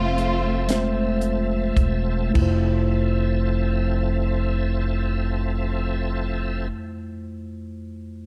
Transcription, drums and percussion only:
0.18 closed hi-hat
0.69 snare, closed hi-hat
1.21 closed hi-hat
1.77 kick, closed hi-hat
2.35 kick, crash

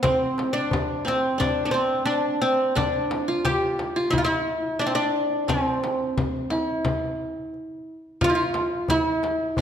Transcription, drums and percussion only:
0.04 darbuka dum, frame drum
0.38 darbuka tek, frame drum
0.71 darbuka dum, frame drum
0.89 darbuka ka
1.06 darbuka tek, frame drum
1.40 darbuka dum, frame drum
1.92 darbuka ka
2.09 darbuka ka
2.26 darbuka ka
2.77 darbuka dum, frame drum
3.11 darbuka tek, frame drum
3.45 frame drum, darbuka dum
3.62 darbuka ka
3.79 darbuka tek, frame drum
4.13 darbuka dum, frame drum
4.81 darbuka ka
5.49 frame drum, darbuka dum
5.84 darbuka tek, frame drum
6.17 darbuka dum, frame drum
6.36 darbuka ka
6.50 darbuka tek, frame drum
6.85 frame drum, darbuka dum
7.54 darbuka ka
8.21 frame drum, darbuka dum
8.54 darbuka tek, frame drum
8.88 darbuka dum, frame drum
9.06 darbuka ka
9.23 darbuka tek, frame drum
9.57 darbuka dum, frame drum

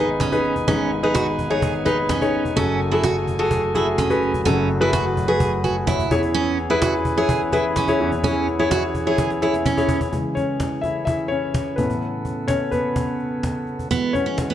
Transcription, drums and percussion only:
0.20 cajon bass, cajon slap
0.32 cajon bass
0.44 cajon slap
0.56 cajon bass
0.68 cajon bass
0.91 cajon slap
1.15 cajon bass, cajon slap
1.39 cajon bass
1.62 cajon bass
1.74 cajon slap
1.86 cajon bass
2.09 cajon bass, cajon slap
2.21 cajon bass
2.33 cajon slap
2.45 cajon bass
2.57 cajon bass
2.81 cajon slap
3.03 cajon bass, cajon slap
3.27 cajon bass
3.51 cajon bass
3.75 cajon bass
3.98 cajon bass, cajon slap
4.10 cajon bass
4.22 cajon slap
4.34 cajon bass
4.46 cajon bass
4.70 cajon slap
4.93 cajon bass, cajon slap
5.17 cajon bass
5.40 cajon bass
5.64 cajon bass
5.87 cajon bass, cajon slap
6.00 cajon bass
6.11 cajon bass
6.23 cajon bass
6.34 cajon slap
6.58 cajon slap
6.82 cajon bass, cajon slap
7.05 cajon bass
7.29 cajon bass
7.52 cajon bass
7.76 cajon bass, cajon slap
7.88 cajon bass
8.00 cajon slap
8.12 cajon bass
8.24 cajon bass
8.47 cajon slap
8.71 cajon bass, cajon slap
8.95 cajon bass
9.18 cajon bass, cajon slap
9.30 cajon slap
9.42 cajon slap
9.54 cajon slap
9.66 cajon bass, cajon slap
9.77 cajon bass
9.89 cajon bass
10.01 cajon bass
10.13 cajon bass
10.37 cajon bass, cajon slap
10.60 cajon bass, cajon slap
10.83 cajon bass, cajon slap
11.07 cajon bass
11.19 cajon slap
11.31 cajon slap
11.54 cajon bass, cajon slap
11.78 cajon bass
11.90 cajon bass
12.01 cajon slap
12.25 cajon bass, cajon slap
12.48 cajon bass, cajon slap
12.72 cajon bass, cajon slap
12.96 cajon bass
13.08 cajon slap
13.20 cajon slap
13.43 cajon bass, cajon slap
13.67 cajon slap
13.79 cajon bass
13.91 cajon bass
14.15 cajon bass, cajon slap
14.38 cajon bass, cajon slap

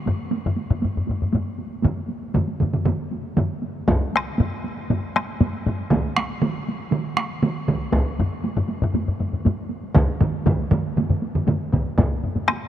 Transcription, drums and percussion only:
0.06 taiko low-mid, taiko high
0.19 taiko high
0.31 taiko high
0.46 taiko low-mid
0.57 taiko high
0.70 taiko low-mid, taiko high
0.82 taiko low-mid, taiko high
0.95 taiko low-mid, taiko high
1.07 taiko low-mid, taiko high
1.20 taiko low-mid, taiko high
1.33 taiko low-mid, taiko high
1.46 taiko high
1.58 taiko high
1.70 taiko high
1.83 taiko low-mid, taiko mid, taiko high
2.09 taiko high
2.22 taiko high
2.34 taiko low-mid, taiko mid, taiko high
2.47 taiko high
2.60 taiko low-mid, taiko mid, taiko high
2.73 taiko low-mid, taiko mid, taiko high
2.86 taiko low-mid, taiko mid, taiko high
2.99 taiko high
3.11 taiko high
3.23 taiko high
3.37 taiko low-mid, taiko mid, taiko high
3.62 taiko high
3.76 taiko high
3.88 taiko, taiko low-mid, taiko high
4.01 taiko high
4.13 taiko rim, taiko high
4.25 taiko high
4.38 taiko low-mid, taiko high
4.64 taiko high
4.77 taiko high
4.90 taiko low-mid, taiko high
5.04 taiko high
5.16 taiko rim, taiko high
5.28 taiko high
5.40 taiko low-mid, taiko high
5.53 taiko high
5.66 taiko low-mid, taiko high
5.79 taiko high
5.90 taiko, taiko mid, taiko high
6.04 taiko high
6.17 taiko rim, taiko high
6.30 taiko high
6.42 taiko mid, taiko high
6.68 taiko high
6.81 taiko high
6.92 taiko mid, taiko high
7.05 taiko high
7.17 taiko rim, taiko high
7.30 taiko high
7.43 taiko mid, taiko high
7.55 taiko high
7.68 taiko, taiko mid, taiko high
7.81 taiko high
7.92 taiko, taiko high
8.06 taiko high
8.19 taiko low-mid, taiko high
8.32 taiko high
8.44 taiko high
8.57 taiko low-mid
8.68 taiko high
8.82 taiko low-mid
8.94 taiko low-mid, taiko high
9.07 taiko low-mid, taiko high
9.20 taiko low-mid, taiko high
9.32 taiko low-mid, taiko high
9.45 taiko low-mid, taiko high
9.58 taiko high
9.69 taiko high
9.84 taiko high
9.95 taiko, taiko low-mid, taiko mid, taiko high
10.08 taiko high
10.21 taiko low-mid, taiko mid, taiko high
10.34 taiko high
10.46 taiko, taiko low-mid, taiko mid, taiko high
10.59 taiko high
10.71 taiko low-mid, taiko mid, taiko high
10.86 taiko high
10.96 taiko low-mid, taiko mid, taiko high
11.10 taiko low-mid, taiko mid, taiko high
11.22 taiko high
11.35 taiko low-mid, taiko mid, taiko high
11.47 taiko low-mid, taiko mid, taiko high
11.60 taiko high
11.72 taiko, taiko low-mid, taiko mid, taiko high
11.86 taiko high
11.98 taiko, taiko low-mid, taiko high
12.24 taiko low-mid
12.36 taiko low-mid, taiko high
12.48 taiko rim, taiko high

